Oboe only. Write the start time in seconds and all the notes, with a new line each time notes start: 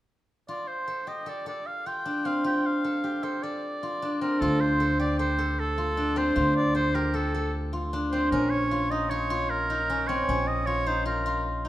0.49 D5
0.67 C5
1.08 D#5
1.28 D5
1.48 D5
1.66 F5
1.87 G5
2.26 F5
2.46 G5
2.66 F5
3.23 C5
3.43 D5
4.21 A#4
4.40 A4
4.61 C5
5.00 D5
5.20 C5
5.59 A4
6.18 C5
6.56 D5
6.75 C5
6.95 A#4
7.15 A4
8.12 C5
8.32 A#4
8.50 C#5
8.90 D#5
9.09 C#5
9.50 A#4
10.07 C#5
10.47 D#5
10.66 C#5
10.87 C5
11.07 A#4